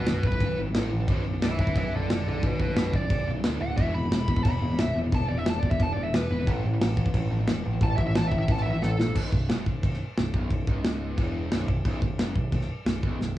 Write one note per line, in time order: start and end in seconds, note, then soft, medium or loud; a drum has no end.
0.06 0.22 B0 medium
0.06 0.22 B1 medium
0.06 0.22 F#2 medium
0.06 0.22 F#4 medium
0.06 0.24 B4 loud
0.06 snare loud
0.06 crash medium
0.23 0.39 B0 medium
0.23 0.32 B1 medium
0.23 0.31 F#2 medium
0.23 0.58 B4 loud
0.23 kick medium
0.32 0.40 B1 medium
0.32 0.40 F#2 medium
0.32 kick medium
0.40 0.56 B0 loud
0.40 0.56 B1 medium
0.40 0.56 F#2 loud
0.40 kick loud
0.40 crash medium
0.58 0.73 G#1 loud
0.58 0.65 B1 medium
0.58 0.65 F#2 medium
0.66 0.74 B1 medium
0.66 0.74 F#2 medium
0.74 0.90 A1 loud
0.74 0.90 A2 medium
0.74 0.90 E3 loud
0.74 0.90 A3 loud
0.74 snare loud
0.74 crash medium
0.92 1.07 A1 medium
0.92 0.99 A2 medium
0.92 0.99 E3 loud
1.00 1.07 A2 medium
1.00 1.08 E3 loud
1.07 1.23 B0 loud
1.07 1.23 B1 loud
1.07 1.24 F#2 loud
1.07 1.24 B2 loud
1.07 kick loud
1.07 crash medium
1.25 1.40 B0 medium
1.25 1.32 B1 medium
1.25 1.31 F#2 medium
1.33 1.41 B1 medium
1.33 1.41 F#2 medium
1.41 1.72 B0 loud
1.41 1.57 B1 medium
1.41 1.57 F#2 medium
1.41 1.59 B4 loud
1.41 1.59 E5 medium
1.41 snare loud
1.41 crash medium
1.58 1.66 B1 medium
1.58 1.66 F#2 medium
1.58 1.75 B4 medium
1.58 1.76 E5 loud
1.58 kick medium
1.67 1.74 B1 medium
1.67 1.75 F#2 medium
1.67 kick medium
1.76 1.91 B0 loud
1.76 1.90 B1 medium
1.76 1.91 F#2 medium
1.76 1.93 B4 medium
1.76 1.93 E5 medium
1.76 kick loud
1.76 crash medium
1.92 2.08 B0 loud
1.92 2.01 B1 medium
1.92 2.00 F#2 loud
1.92 2.10 A4 medium
1.92 2.10 D5 medium
2.02 2.09 B1 medium
2.02 2.09 F#2 medium
2.10 2.25 F#1 medium
2.10 2.25 B1 medium
2.10 2.25 F#2 medium
2.10 2.26 A4 medium
2.10 2.27 D5 medium
2.10 snare loud
2.10 crash medium
2.26 2.41 B0 medium
2.26 2.34 B1 medium
2.26 2.34 F#2 medium
2.26 2.46 A4 medium
2.26 2.46 D5 loud
2.35 2.42 B1 medium
2.35 2.43 F#2 medium
2.43 2.58 B0 loud
2.43 2.58 B1 medium
2.43 2.58 F#2 loud
2.43 2.59 F#4 medium
2.43 2.61 B4 medium
2.43 kick loud
2.43 crash medium
2.60 2.75 B0 medium
2.60 2.68 B1 medium
2.60 2.68 F#2 medium
2.60 2.75 F#4 medium
2.60 2.75 B4 loud
2.60 kick medium
2.69 2.76 B1 medium
2.69 2.76 F#2 medium
2.76 2.92 B0 loud
2.76 2.92 B1 medium
2.76 2.92 F#2 medium
2.76 2.92 F#4 medium
2.76 2.93 B4 medium
2.76 snare loud
2.76 crash medium
2.93 3.09 B0 medium
2.93 3.01 B1 medium
2.93 3.01 F#2 medium
2.93 3.27 D5 loud
2.93 kick medium
3.02 3.10 B1 medium
3.02 3.10 F#2 medium
3.10 3.25 B0 medium
3.10 3.26 B1 medium
3.10 3.26 F#2 medium
3.10 kick loud
3.10 crash medium
3.26 3.42 B0 loud
3.26 3.35 B1 medium
3.26 3.35 F#2 medium
3.36 3.44 B1 medium
3.36 3.44 F#2 medium
3.44 3.59 D1 medium
3.44 3.60 D2 loud
3.44 3.60 A2 loud
3.44 3.60 D3 loud
3.44 snare loud
3.44 crash medium
3.60 3.78 D1 medium
3.60 3.69 D2 medium
3.60 3.68 A2 medium
3.60 3.77 F#5 loud
3.70 3.77 D2 medium
3.70 3.77 A2 loud
3.77 3.93 E1 loud
3.77 3.93 E2 loud
3.77 3.94 B2 loud
3.77 3.94 E3 loud
3.77 3.93 E5 loud
3.77 kick loud
3.77 crash medium
3.94 4.10 E1 medium
3.94 4.03 E2 medium
3.94 4.03 B2 medium
3.94 4.43 B5 loud
4.04 4.11 E2 medium
4.04 4.11 B2 medium
4.11 4.42 E1 medium
4.11 4.26 E2 medium
4.11 4.27 B2 medium
4.11 snare loud
4.11 crash medium
4.28 4.35 E2 medium
4.28 4.35 B2 medium
4.28 kick loud
4.37 4.44 E2 medium
4.37 4.44 B2 medium
4.37 kick medium
4.44 4.60 E1 loud
4.44 4.60 E2 medium
4.44 4.60 B2 medium
4.44 4.77 B5 loud
4.44 kick loud
4.44 crash medium
4.61 4.77 E1 loud
4.61 4.69 E2 medium
4.61 4.69 B2 loud
4.71 4.77 E2 medium
4.71 4.78 B2 medium
4.78 4.94 B0 medium
4.78 4.93 E2 medium
4.78 4.94 B2 loud
4.78 4.96 E5 loud
4.78 snare loud
4.78 crash medium
4.95 5.11 E1 medium
4.95 5.03 E2 medium
4.95 5.03 B2 medium
5.04 5.11 E2 medium
5.04 5.11 B2 medium
5.12 5.27 E1 loud
5.12 5.27 E2 medium
5.12 5.27 B2 medium
5.12 5.24 A5 loud
5.12 kick loud
5.12 crash medium
5.29 5.44 E1 medium
5.29 5.37 E2 medium
5.29 5.36 B2 medium
5.29 5.38 D5 medium
5.37 5.45 E2 medium
5.37 5.45 B2 medium
5.37 5.47 E5 loud
5.46 5.62 E1 loud
5.46 5.61 E2 medium
5.46 5.61 B2 medium
5.46 5.58 A5 loud
5.46 snare loud
5.46 crash medium
5.59 5.78 E1 medium
5.59 5.69 B2 medium
5.59 5.69 D5 medium
5.59 kick medium
5.63 5.70 E2 medium
5.70 5.78 E2 medium
5.70 5.78 B2 medium
5.70 5.80 E5 loud
5.70 kick medium
5.79 5.95 E1 loud
5.79 5.94 E2 medium
5.79 5.94 B2 medium
5.79 5.92 A5 medium
5.79 kick loud
5.79 crash medium
5.93 6.11 E1 loud
5.93 6.04 E2 medium
5.93 6.04 B2 medium
5.93 6.02 D5 medium
6.04 6.13 E2 medium
6.04 6.13 B2 medium
6.04 6.14 E5 loud
6.13 6.29 E1 medium
6.13 6.28 E2 loud
6.13 6.29 B2 loud
6.13 6.47 B4 loud
6.13 snare loud
6.13 crash medium
6.30 6.45 E1 loud
6.30 6.39 E2 medium
6.30 6.38 B2 medium
6.39 6.47 E2 medium
6.39 6.47 B2 medium
6.47 6.62 A1 loud
6.47 6.63 A2 loud
6.47 6.63 E3 loud
6.47 6.63 A3 loud
6.47 kick loud
6.47 crash medium
6.64 6.79 A1 loud
6.64 6.72 A2 medium
6.64 6.72 E3 medium
6.73 6.80 A2 medium
6.73 6.81 E3 medium
6.81 7.11 A1 loud
6.81 6.96 A2 medium
6.81 6.96 E3 medium
6.81 snare loud
6.81 crash medium
6.97 7.05 A2 medium
6.97 7.04 E3 medium
6.97 kick loud
7.05 7.14 A2 medium
7.05 7.14 E3 medium
7.05 kick medium
7.14 7.29 A1 loud
7.14 7.30 A2 medium
7.14 7.30 E3 medium
7.14 kick medium
7.14 crash medium
7.30 7.46 A1 medium
7.30 7.38 A2 medium
7.30 7.38 E3 medium
7.39 7.46 A2 medium
7.39 7.46 E3 medium
7.47 7.63 E1 loud
7.47 7.62 A2 medium
7.47 7.63 E3 medium
7.47 snare loud
7.47 crash medium
7.64 7.80 A1 medium
7.64 7.72 A2 medium
7.64 7.72 E3 medium
7.73 7.80 A2 medium
7.73 7.81 E3 medium
7.81 7.97 A1 loud
7.81 7.96 A2 medium
7.81 7.96 E3 loud
7.81 7.93 A5 loud
7.81 kick loud
7.81 crash medium
7.96 8.13 A1 loud
7.96 8.05 A2 medium
7.96 8.05 E3 medium
7.96 8.05 E5 medium
7.96 kick medium
8.06 8.14 A2 medium
8.06 8.14 E3 medium
8.06 8.16 E5 loud
8.15 8.31 A1 loud
8.15 8.30 A2 medium
8.15 8.30 E3 medium
8.15 8.27 A5 loud
8.15 snare loud
8.15 crash medium
8.27 8.38 E5 loud
8.31 8.47 A1 medium
8.31 8.39 A2 medium
8.31 8.38 E3 medium
8.31 kick medium
8.39 8.47 A2 medium
8.39 8.48 E3 medium
8.39 8.49 E5 medium
8.48 8.64 A1 medium
8.48 8.64 A2 medium
8.48 8.64 E3 medium
8.48 8.61 A5 medium
8.48 kick loud
8.48 crash medium
8.57 snare soft
8.62 8.81 A1 loud
8.62 8.72 A2 medium
8.62 8.71 E3 loud
8.62 8.70 E5 medium
8.71 8.81 A2 medium
8.71 8.81 E3 medium
8.71 8.82 E5 loud
8.82 8.97 A1 loud
8.82 8.97 A2 medium
8.82 8.97 E3 loud
8.82 9.15 A4 loud
8.82 snare medium
8.98 9.14 A#1 medium
8.98 9.06 A2 medium
8.98 9.05 E3 medium
8.98 snare medium
9.06 9.15 A2 medium
9.06 9.15 E3 medium
9.16 9.32 B0 loud
9.16 9.32 B1 loud
9.16 kick medium
9.16 crash loud
9.16 crash medium
9.32 9.48 B0 medium
9.32 9.46 B1 medium
9.32 kick medium
9.49 9.66 F#1 medium
9.49 9.66 F#2 loud
9.49 snare loud
9.49 crash medium
9.66 9.82 B0 medium
9.66 9.80 B1 medium
9.66 kick medium
9.83 9.99 B0 medium
9.83 9.97 B1 medium
9.83 kick loud
9.83 crash medium
9.93 snare soft
10.17 10.33 B0 medium
10.17 10.31 B1 medium
10.17 snare loud
10.17 crash medium
10.34 10.49 B0 medium
10.34 10.50 B1 loud
10.34 kick loud
10.50 10.66 B0 medium
10.50 10.64 B1 medium
10.50 kick medium
10.50 crash medium
10.67 11.14 C#1 loud
10.67 11.17 C#2 medium
10.67 kick loud
10.84 snare loud
10.84 crash medium
11.18 11.49 E1 loud
11.18 11.51 E2 loud
11.18 kick loud
11.18 crash medium
11.51 11.67 B0 loud
11.51 11.67 B1 loud
11.51 snare loud
11.51 crash medium
11.68 11.84 B0 medium
11.68 11.82 B1 medium
11.68 kick medium
11.85 12.01 B0 loud
11.85 12.02 B1 loud
11.85 kick loud
11.85 crash medium
12.02 12.18 B0 medium
12.02 12.16 B1 medium
12.02 kick loud
12.19 12.35 F#1 loud
12.19 12.36 F#2 loud
12.19 snare loud
12.19 crash medium
12.36 12.51 B0 medium
12.36 12.50 B1 medium
12.36 kick medium
12.52 12.68 B0 medium
12.52 12.67 B1 medium
12.52 kick medium
12.52 crash medium
12.61 snare soft
12.85 13.02 B0 medium
12.85 13.00 B1 medium
12.85 snare loud
12.85 crash medium
13.03 13.19 B0 medium
13.03 13.20 B1 loud
13.03 kick medium
13.20 13.36 B0 medium
13.20 13.34 B1 medium
13.20 snare medium